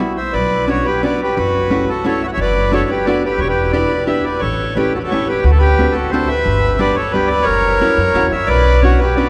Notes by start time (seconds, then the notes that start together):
Already playing: E4
0.00 G3 B3 E4 F#4
0.17 C5 E5
0.33 B1 B4 D5
0.68 B3 C#4 D4 F#4 C#5
0.85 G4 B4
1.03 B3 C#4 D4 F#4 B4 D5
1.23 G4 B4
1.36 F#1 F#4 B4
1.70 A3 C#4 E4 F#4
1.89 F#4 A4
2.04 A3 C#4 E4 F#4 A4 C#5
2.23 C#5 E5
2.27 F#5
2.33 C#5 E5
2.38 F#1 D5
2.42 B4
2.72 A3 B3 D4 F#4 A4 C#5
2.90 G4 B4
3.05 A3 B3 D4 F#4 B4 D5
3.25 G4 B4
3.38 E1 G4 C#5
3.48 G4 B4
3.71 B3 D4 E4 G4 B4 D5
4.07 B3 D4 E4 G4 B4 E5
4.24 B4 D5
4.39 A1 A4 C#5
4.75 A3 C#4 E4 G4 B4
4.94 F#4 A4
4.99 B4
5.03 F#4 A4
5.09 A3 C#4 E4 G4 A4 C#5
5.27 G4 B4
5.42 D2 F#4 B4
5.51 A4
5.58 G4 B4
5.79 A3 C4 D4 F#4
5.91 F#4 A4
6.10 A3 C4 D4 A4 C5
6.14 F#4
6.28 B4 E5
6.46 G1
6.79 G3 B3 D4 G4 B4 D5
6.95 A4 C#5
7.11 G3 B3 D4 G4 B4
7.15 G4
7.27 B4 D5
7.42 A#4 C#5
7.47 F#1
7.81 A#3 C#4 E4 F#4
7.98 F#2
8.14 E2 A#3 C#4 E4 F#4
8.31 C#2 C#5 E5
8.46 B1 B4 D5
8.81 B3 C#4 D4 F#4 C#5
8.99 G4 B4
9.15 B3 C#4 D4 F#4 B4 D5